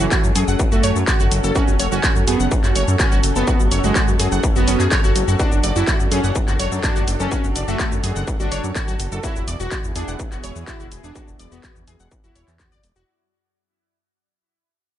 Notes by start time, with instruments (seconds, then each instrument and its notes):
Already playing: synth drone F#2 F#3, analog synth pad C#4 F#4 A4
0.00 analog polysynth E3
0.12 synth pluck F#4, kick, clap, shaker
0.24 analog synth bass F#2, shaker
0.35 analog synth bass F#2, synth pluck G#4, open hi-hat, shaker
0.48 analog synth bass F#1, synth pluck F#5, shaker
0.60 kick, shaker
0.72 analog synth bass F#1, analog polysynth A3, synth pluck F#4, shaker
0.83 analog synth bass F#1, synth pluck C#5, open hi-hat, shaker
0.96 analog synth bass F#2, shaker
1.08 synth pluck F#4, kick, clap, shaker
1.20 analog synth bass F#1, synth pluck F#4, shaker
1.31 analog synth bass F#1, open hi-hat, shaker
1.44 analog synth bass F#1, synth pluck A4, shaker
1.55 analog polysynth C#4, synth pluck F#4, kick, shaker
1.68 analog synth bass F#1, shaker
1.79 analog synth bass F#1, synth pluck C#5, open hi-hat, shaker
1.92 analog synth bass F#1, analog polysynth C#4, synth pluck F#4, shaker
2.04 synth pluck F#4, kick, clap, shaker
2.16 analog synth bass F#2, shaker
2.27 analog synth bass F#2, analog polysynth B3, synth pluck G#4, open hi-hat, shaker
2.40 analog synth bass F#1, synth pluck F#5, shaker
2.52 kick, shaker
2.64 analog synth bass F#1, synth pluck F#4, clap, shaker
2.76 analog synth bass F#1, synth pluck C#5, open hi-hat, shaker
2.88 analog synth bass F#2, shaker
3.00 analog polysynth C#4, synth pluck F#4, kick, clap, shaker
3.12 analog synth bass F#1, synth pluck F#4, shaker
3.23 analog synth bass F#1, open hi-hat, shaker
3.36 analog synth bass F#1, analog polysynth B3, synth pluck A4, shaker
3.48 synth pluck F#4, kick, shaker
3.60 analog synth bass F#1, shaker
3.71 analog synth bass F#1, synth pluck C#5, open hi-hat, shaker
3.84 analog synth bass F#1, analog polysynth G#3, synth pluck F#4, shaker
3.96 synth pluck F#4, kick, clap, shaker
4.08 analog synth bass F#2, shaker
4.19 analog synth bass F#2, synth pluck G#4, open hi-hat, shaker
4.32 analog synth bass F#1, synth pluck F#5, shaker
4.44 kick, shaker
4.56 analog synth bass F#1, analog polysynth B3, synth pluck F#4, shaker
4.67 analog synth bass F#1, synth pluck C#4, open hi-hat, shaker
4.80 analog synth bass F#2, synth pluck G#4, clap, shaker
4.92 synth pluck C#5, kick, clap, shaker
5.04 analog synth bass F#1, synth pluck F#4, shaker
5.15 analog synth bass F#1, open hi-hat, shaker
5.28 analog synth bass F#1, synth pluck F#4, shaker
5.40 analog synth pad D4, analog polysynth D4, synth pluck F#4, kick, shaker
5.52 analog synth bass F#1, shaker
5.63 analog synth bass F#1, synth pluck D5, open hi-hat, shaker
5.76 analog synth bass F#1, analog polysynth E4, synth pluck F#4, shaker
5.88 synth pluck F#4, kick, clap, shaker
6.00 analog synth bass F#2, shaker
6.11 analog synth bass F#2, analog polysynth C#4, synth pluck G#4, open hi-hat, shaker
6.24 analog synth bass F#1, synth pluck F#5, shaker
6.36 kick, shaker
6.48 analog synth bass F#1, synth pluck F#4, clap, shaker
6.60 analog synth bass F#1, synth pluck C#5, open hi-hat, shaker
6.72 analog synth bass F#2, shaker
6.84 analog polysynth D4, synth pluck F#4, kick, clap, shaker
6.96 analog synth bass F#1, synth pluck F#4, shaker
7.08 analog synth bass F#1, open hi-hat, shaker
7.20 analog synth bass F#1, analog polysynth C#4, synth pluck A4, shaker
7.32 synth pluck F#4, kick, shaker
7.44 analog synth bass F#1, shaker
7.55 analog synth bass F#1, synth pluck D5, open hi-hat, shaker
7.68 analog synth bass F#1, analog polysynth A3, synth pluck F#4, shaker
7.80 synth pluck F#4, kick, clap, shaker
7.92 analog synth bass F#2, shaker
8.04 analog synth bass F#2, synth pluck G#4, open hi-hat, shaker
8.16 analog synth bass F#1, synth pluck F#5, shaker
8.28 kick, shaker
8.40 analog synth bass F#1, analog polysynth D4, synth pluck F#4, shaker
8.52 analog synth bass F#1, synth pluck C#5, open hi-hat, shaker
8.64 analog synth bass F#2, shaker
8.76 synth pluck F#4, kick, clap, shaker
8.88 analog synth bass F#1, synth pluck F#4, shaker
8.99 analog synth bass F#1, open hi-hat, shaker
9.12 analog synth bass F#1, synth pluck A4, shaker
9.23 analog synth pad B3 E4 G#4, analog polysynth E4, synth pluck F#4, kick, shaker
9.36 analog synth bass E1, shaker
9.47 analog synth bass E1, synth pluck D5, open hi-hat, shaker
9.60 analog synth bass E1, analog polysynth F#4, synth pluck F#4, shaker
9.72 synth pluck F#4, kick, clap, shaker
9.84 analog synth bass E2, shaker
9.95 analog synth bass E2, analog polysynth D4, synth pluck G#4, open hi-hat, shaker
10.08 analog synth bass E1, synth pluck F#5, shaker
10.20 kick, shaker
10.32 analog synth bass E1, synth pluck F#4, clap, shaker
10.44 analog synth bass E1, synth pluck C#5, open hi-hat, shaker
10.56 analog synth bass E2, shaker
10.68 analog polysynth E4, synth pluck F#4, kick, clap, shaker
10.80 analog synth bass E1, synth pluck F#4, shaker
10.92 analog synth bass E1, open hi-hat, shaker
11.04 analog synth bass E1, analog polysynth D4, synth pluck G#4, shaker
11.16 synth pluck F#4, kick, shaker
11.28 analog synth bass E1, shaker
11.39 analog synth bass E1, synth pluck D5, open hi-hat, shaker
11.52 analog synth bass E1, analog polysynth B3, synth pluck F#4, shaker
11.64 synth pluck F#4, kick, clap, shaker
11.76 analog synth bass E2, shaker
11.87 analog synth bass E2, synth pluck G#4, open hi-hat, shaker
12.00 analog synth bass E1, synth pluck F#5, shaker
12.12 kick, shaker
12.24 analog synth bass E1, analog polysynth E4, synth pluck F#4, shaker
12.35 analog synth bass E1, synth pluck C#5, open hi-hat, shaker
12.48 analog synth bass E2, clap, shaker
12.60 synth pluck F#4, kick, clap, shaker
12.72 analog synth bass E1, synth pluck D5, shaker
12.84 analog synth bass E1, open hi-hat, shaker
12.96 analog synth bass E1, synth pluck F#4, shaker